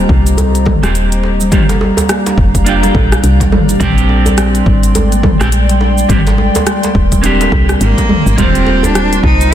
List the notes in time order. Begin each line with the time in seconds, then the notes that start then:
Already playing: A#3 C4 F4 G4 C5 D#5 A#5
0.09 C2 G4, kick
0.26 closed hi-hat, cabasa
0.38 G3, closed hi-hat, djembe bass, cabasa
0.55 closed hi-hat, cabasa
0.66 A#3, kick, mid tom, djembe slap, djembe tone, djembe bass
0.83 D#1 A#3 C4 F4 G4, cross-stick, closed hi-hat, cabasa
0.95 closed hi-hat, cabasa
1.12 closed hi-hat, cabasa
1.23 djembe slap
1.41 G3, cabasa
1.52 G1 A#3 D4 F4 G4 D5 F5 A#5, kick, closed hi-hat, mid tom, cabasa
1.69 closed hi-hat, djembe slap, djembe tone, cabasa
1.81 G3, djembe tone
1.97 closed hi-hat, djembe slap, djembe tone, djembe bass, cabasa
2.09 A#3, cross-stick, closed hi-hat, cabasa
2.26 D4, closed hi-hat, djembe slap, cabasa
2.38 F1, kick
2.55 kick, closed hi-hat, cabasa
2.65 A#3 D4 F4, closed hi-hat, cabasa
2.69 G4
2.83 G3, closed hi-hat, djembe slap, cabasa
2.95 A#1 G4, kick, djembe tone, djembe bass
3.12 cross-stick, closed hi-hat, cabasa
3.23 C2 G3, closed hi-hat, cabasa
3.40 kick, closed hi-hat, djembe slap, cabasa
3.52 G1 A#3, mid tom, djembe bass
3.69 D4, closed hi-hat, cabasa
3.80 A#1 C4 D4 G4 G5 C6, kick, closed hi-hat, mid tom, cabasa
3.98 closed hi-hat, cabasa
4.09 djembe tone
4.26 G3, closed hi-hat, djembe tone, djembe bass, cabasa
4.38 D4, cross-stick, closed hi-hat, cabasa
4.55 closed hi-hat, cabasa
4.66 G#1 G3, kick
4.83 closed hi-hat, cabasa
4.95 G#3, closed hi-hat, djembe bass, cabasa
5.12 A#3, closed hi-hat, cabasa
5.23 kick, mid tom, djembe slap, djembe tone, djembe bass
5.40 A#1 G#3 C4 D4 G4, cross-stick, closed hi-hat, cabasa
5.52 closed hi-hat, cabasa
5.69 G3, closed hi-hat, cabasa
5.81 D4, djembe slap
5.98 cabasa
6.09 G#1 G3 A#3 C4 D4 G4 A#4, kick, closed hi-hat, mid tom, cabasa
6.27 closed hi-hat, djembe slap, djembe tone, cabasa
6.38 G#3, djembe tone
6.55 A#3, closed hi-hat, djembe slap, djembe tone, djembe bass, cabasa
6.67 cross-stick, closed hi-hat, cabasa
6.83 closed hi-hat, djembe slap, cabasa
6.95 D#1, kick
7.12 G3, kick, closed hi-hat, cabasa
7.22 A#3 C4 D4 G4, closed hi-hat, cabasa
7.41 closed hi-hat, djembe slap, cabasa
7.52 C2 G3, kick, djembe tone, djembe bass
7.69 cross-stick, closed hi-hat, cabasa
7.81 G#1 G#3 A#3, closed hi-hat, cabasa
7.98 A#3, kick, closed hi-hat, djembe slap, cabasa
8.09 mid tom, djembe bass
8.26 G#1, cabasa
8.36 D#1 A#3 C4 F4 G4 C5 G5, kick, closed hi-hat, mid tom, cabasa
8.55 G3, closed hi-hat, cabasa
8.66 G4, djembe tone
8.83 D4, closed hi-hat, djembe tone, djembe bass, cabasa
8.95 G3, cross-stick, closed hi-hat, cabasa
9.13 closed hi-hat, cabasa
9.23 C2 A#3 D#4, kick
9.41 C4, closed hi-hat, cabasa